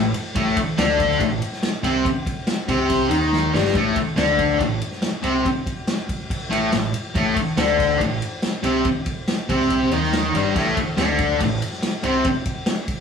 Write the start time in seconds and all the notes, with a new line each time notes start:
Already playing: A1
0.14 ride
0.35 A1 A2 A3, kick, ride
0.57 muted fingered electric bass stroke, muted distorted electric guitar stroke, kick, ride
0.77 D2 D3 D4, snare, ride
0.99 kick, ride
1.10 snare
1.20 A1 A2, kick, ride
1.42 ride
1.52 snare
1.63 snare, ride
1.83 C2 C3 C4, ride
2.05 kick, ride
2.27 kick, ride
2.47 snare, ride
2.68 C2 C3 C4, kick, ride
2.90 kick, ride
3.10 D#2 D#3 D#4, ride
3.33 snare
3.53 G1 G2 G3, snare
3.64 snare
3.75 A1 A2 A3, kick, ride
3.96 muted fingered electric bass stroke, muted distorted electric guitar stroke, kick, ride
4.16 D2 D3 D4, snare, ride
4.39 kick, ride
4.59 A1 A2, kick, ride
4.81 ride
4.91 snare
5.02 snare, ride
5.22 C2 C3 C4, ride
5.45 kick, ride
5.67 kick, ride
5.87 snare, ride
6.09 kick, ride
6.30 kick, ride
6.50 A1 A2 A3, ride
6.72 A1 A2, snare, ride
6.94 ride
7.15 A1 A2 A3, kick, ride
7.36 muted distorted electric guitar stroke, muted fingered electric bass stroke, kick, ride
7.57 D2 D3 D4, snare, ride
7.79 kick, ride
7.99 A1 A2, kick, ride
8.22 ride
8.42 snare, ride
8.63 C2 C3 C4, ride
8.85 kick, ride
9.06 kick, ride
9.28 snare, ride
9.49 C2 C3 C4, kick, ride
9.60 snare
9.70 kick, ride
9.90 D#2 D#3 D#4, ride
10.03 snare
10.13 snare, ride
10.33 G1 G2 G3, ride
10.55 A1 A2 A3, kick, crash
10.76 muted distorted electric guitar stroke, muted fingered electric bass stroke, kick, ride
10.97 D2 D3 D4, snare, ride
11.18 kick, ride
11.40 A1 A2, kick, ride
11.62 ride
11.72 snare
11.82 snare, ride
12.03 C2 C3 C4, ride
12.24 kick, ride
12.45 kick, ride
12.66 snare, ride
12.88 kick, ride